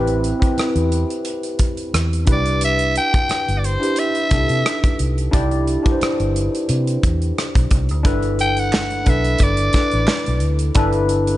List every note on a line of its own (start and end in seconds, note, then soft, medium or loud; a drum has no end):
0.00 0.32 A1 medium
0.00 0.40 C4 loud
0.00 0.40 E4 medium
0.00 0.42 G4 medium
0.00 0.42 B4 loud
0.07 closed hi-hat soft
0.24 closed hi-hat medium
0.40 1.63 C4 medium
0.40 1.63 E4 medium
0.40 1.64 G4 medium
0.40 1.64 B4 medium
0.40 kick medium
0.40 closed hi-hat soft
0.58 muted fingered electric bass stroke soft
0.58 cross-stick medium
0.58 closed hi-hat medium
0.75 1.03 E2 medium
0.75 closed hi-hat soft
0.92 closed hi-hat medium
1.10 closed hi-hat soft
1.25 closed hi-hat medium
1.43 closed hi-hat soft
1.59 kick medium
1.59 closed hi-hat medium
1.77 closed hi-hat soft
1.94 2.29 E2 medium
1.94 cross-stick medium
1.94 closed hi-hat medium
2.13 closed hi-hat soft
2.25 2.97 C2 medium
2.25 3.51 D4 medium
2.25 3.51 E4 medium
2.25 3.52 G4 medium
2.25 3.52 B4 medium
2.25 kick medium
2.25 closed hi-hat medium
2.32 2.62 D5 medium
2.46 closed hi-hat soft
2.61 2.95 E5 loud
2.61 closed hi-hat medium
2.79 closed hi-hat soft
2.95 3.60 G5 loud
2.95 closed hi-hat medium
3.14 kick medium
3.14 closed hi-hat soft
3.29 muted fingered electric bass stroke soft
3.29 cross-stick medium
3.29 closed hi-hat medium
3.48 3.76 G1 medium
3.48 closed hi-hat soft
3.59 3.67 D5 medium
3.64 4.01 C5 medium
3.64 closed hi-hat medium
3.80 4.26 D4 medium
3.80 4.27 E4 medium
3.80 4.27 G4 medium
3.80 4.28 B4 medium
3.80 closed hi-hat medium
3.96 5.01 E5 medium
3.96 closed hi-hat medium
4.15 closed hi-hat soft
4.30 4.46 C2 medium
4.30 5.24 D4 medium
4.30 4.38 D#4 soft
4.30 5.25 G4 medium
4.30 5.25 A4 medium
4.30 kick medium
4.30 cross-stick soft
4.30 closed hi-hat medium
4.37 5.28 E4 medium
4.49 4.63 C3 medium
4.49 closed hi-hat soft
4.66 cross-stick medium
4.66 closed hi-hat medium
4.84 kick medium
4.84 closed hi-hat soft
4.99 5.27 C2 medium
4.99 closed hi-hat medium
5.18 closed hi-hat soft
5.31 5.76 C2 medium
5.31 5.80 D4 medium
5.31 5.80 E4 medium
5.31 5.81 G4 loud
5.31 5.81 D5 loud
5.31 kick medium
5.31 closed hi-hat medium
5.51 closed hi-hat soft
5.67 closed hi-hat medium
5.83 7.06 D4 medium
5.83 7.07 E4 medium
5.83 7.07 G4 medium
5.83 5.92 B4 medium
5.83 kick medium
5.83 closed hi-hat soft
5.92 7.11 C5 medium
6.01 muted fingered electric bass stroke soft
6.01 cross-stick medium
6.01 closed hi-hat medium
6.20 6.47 G1 medium
6.20 closed hi-hat soft
6.36 closed hi-hat medium
6.55 closed hi-hat medium
6.69 6.97 C3 medium
6.69 closed hi-hat medium
6.87 closed hi-hat soft
7.03 7.31 E2 medium
7.03 kick medium
7.03 closed hi-hat medium
7.22 closed hi-hat soft
7.38 cross-stick medium
7.38 closed hi-hat medium
7.55 7.68 B1 medium
7.55 kick medium
7.55 closed hi-hat soft
7.71 7.91 C2 medium
7.71 kick medium
7.71 closed hi-hat medium
7.89 8.03 D2 medium
7.89 closed hi-hat soft
8.03 9.03 G1 medium
8.03 8.97 D4 loud
8.03 8.98 E4 medium
8.03 8.98 A4 loud
8.03 8.99 B4 loud
8.03 kick loud
8.03 closed hi-hat medium
8.23 closed hi-hat soft
8.39 8.61 G5 loud
8.39 closed hi-hat medium
8.57 9.11 F#5 medium
8.57 closed hi-hat soft
8.73 snare medium
8.73 clap medium
8.90 closed hi-hat soft
9.04 9.34 B1 loud
9.04 9.68 D4 medium
9.04 9.68 E4 medium
9.04 9.69 A4 medium
9.04 9.69 B4 medium
9.04 kick medium
9.04 closed hi-hat medium
9.10 9.44 E5 medium
9.24 closed hi-hat soft
9.38 9.68 G1 loud
9.38 kick medium
9.38 closed hi-hat medium
9.43 10.44 D5 medium
9.57 closed hi-hat soft
9.73 10.67 D4 medium
9.73 10.67 E4 medium
9.73 10.68 A4 medium
9.73 10.68 B4 medium
9.73 kick medium
9.73 snare soft
9.73 closed hi-hat medium
9.91 10.06 A1 medium
9.91 closed hi-hat soft
10.07 snare medium
10.07 clap medium
10.26 10.42 B1 medium
10.26 closed hi-hat soft
10.40 10.69 D2 medium
10.40 closed hi-hat medium
10.59 closed hi-hat soft
10.75 11.37 G1 medium
10.75 11.37 D4 loud
10.75 11.37 E4 loud
10.75 11.37 A4 loud
10.75 11.37 B4 loud
10.75 kick loud
10.75 closed hi-hat medium
10.93 closed hi-hat soft
11.09 closed hi-hat medium
11.27 closed hi-hat medium